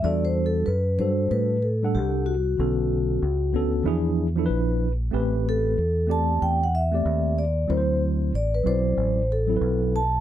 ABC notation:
X:1
M:4/4
L:1/16
Q:"Swing 16ths" 1/4=94
K:Em
V:1 name="Vibraphone"
(3d2 c2 A2 B2 c2 B2 A2 G2 F2- | F8 z8 | z2 A4 a2 g f e4 d2 | c2 z2 d B c4 A4 a2 |]
V:2 name="Tine electric piano"
[G,DFA]4 z2 [F,G,DFA]3 z2 [G,DAf]3 z2 | [D,B,^CA]4 z2 [D,B,CA]2 [=F,DE^G]2 z [F,DEAB]3 z2 | [A,CGB]4 z2 [A,CGd]3 z2 [A,CGd]3 z2 | [F,CE_Bc]4 z2 [F,CEd]3 z2 [F,CEA=B]3 z2 |]
V:3 name="Fingered electric bass" clef=bass
E,,4 F,,2 G,,2 A,,4 C,,4 | B,,,4 ^C,,2 D,,2 E,,4 _B,,,4 | A,,,4 E,,4 E,,4 _E,,4 | D,,4 A,,,2 B,,,2 A,,,4 B,,,4 |]